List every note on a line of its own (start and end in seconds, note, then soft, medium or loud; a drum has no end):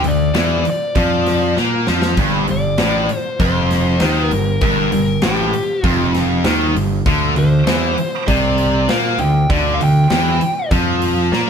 0.04 0.33 D2 medium
0.04 0.29 D3 medium
0.04 0.35 D5 medium
0.04 open hi-hat medium
0.34 0.63 E2 medium
0.34 0.64 E3 loud
0.34 snare loud
0.34 open hi-hat medium
0.38 0.68 D5 medium
0.65 open hi-hat medium
0.70 0.97 D5 medium
0.95 1.53 F2 medium
0.95 1.57 F3 loud
0.95 1.54 D5 medium
0.95 kick medium
0.95 open hi-hat medium
1.26 snare soft
1.26 open hi-hat medium
1.57 1.86 A#2 medium
1.57 1.88 A#3 loud
1.57 snare medium
1.87 2.16 F2 medium
1.87 2.17 F3 loud
1.87 snare medium
2.02 snare medium
2.17 2.46 G1 medium
2.17 2.47 G2 loud
2.17 kick loud
2.17 open hi-hat medium
2.48 2.77 G1 medium
2.48 2.73 G2 medium
2.48 3.17 D5 loud
2.48 open hi-hat medium
2.78 3.07 A1 medium
2.78 3.09 A2 medium
2.78 snare loud
2.78 open hi-hat medium
3.09 open hi-hat soft
3.17 3.41 C5 loud
3.40 3.97 F1 medium
3.40 4.00 F2 loud
3.40 4.27 C5 loud
3.40 kick loud
3.40 open hi-hat medium
3.71 snare soft
3.71 open hi-hat medium
4.00 4.30 D#2 medium
4.00 4.31 D#3 loud
4.00 snare loud
4.00 open hi-hat medium
4.27 4.61 A#4 loud
4.27 open hi-hat medium
4.32 4.60 G1 medium
4.32 4.56 G2 medium
4.61 4.90 G1 loud
4.61 4.91 G2 loud
4.61 4.91 A#4 loud
4.61 kick loud
4.61 open hi-hat medium
4.92 5.21 G1 medium
4.92 5.17 G2 medium
4.92 5.21 A#4 medium
4.92 open hi-hat medium
5.22 5.51 A1 medium
5.22 5.52 A2 loud
5.22 5.86 G4 medium
5.22 snare loud
5.22 open hi-hat medium
5.53 open hi-hat medium
5.84 6.41 F1 medium
5.84 6.44 F2 loud
5.84 6.11 F4 medium
5.84 kick medium
5.84 open hi-hat medium
6.14 snare soft
6.14 open hi-hat medium
6.44 6.73 D#2 medium
6.44 6.75 D#3 medium
6.44 snare loud
6.44 open hi-hat medium
6.75 7.04 G1 medium
6.75 7.00 G2 medium
6.75 open hi-hat medium
7.06 7.34 D2 loud
7.06 7.35 D3 loud
7.06 kick loud
7.06 open hi-hat medium
7.36 7.65 D2 medium
7.36 7.61 D3 medium
7.36 8.28 C5 medium
7.36 open hi-hat medium
7.66 7.95 E2 medium
7.66 7.97 E3 loud
7.66 snare loud
7.66 open hi-hat medium
7.98 open hi-hat medium
8.28 8.85 C2 medium
8.28 8.89 C3 loud
8.28 8.91 D5 medium
8.28 kick loud
8.28 open hi-hat medium
8.58 open hi-hat soft
8.88 9.17 A#2 medium
8.88 9.19 A#3 medium
8.88 9.20 F5 loud
8.88 snare medium
8.88 open hi-hat medium
9.19 9.47 D2 medium
9.19 9.45 D3 medium
9.19 9.48 G5 loud
9.19 open hi-hat medium
9.50 9.78 D2 medium
9.50 9.80 D3 loud
9.50 9.74 D5 loud
9.50 kick loud
9.50 open hi-hat medium
9.74 9.81 F5 medium
9.80 10.09 D2 medium
9.80 10.05 D3 medium
9.80 10.69 G5 medium
9.80 open hi-hat medium
10.10 10.39 E2 medium
10.10 10.40 E3 loud
10.10 snare loud
10.10 open hi-hat medium
10.41 open hi-hat medium
10.71 11.28 F2 medium
10.71 11.32 F3 loud
10.71 kick loud
10.71 open hi-hat medium
11.02 open hi-hat medium
11.32 11.50 A#2 medium
11.32 11.50 A#3 loud
11.32 snare medium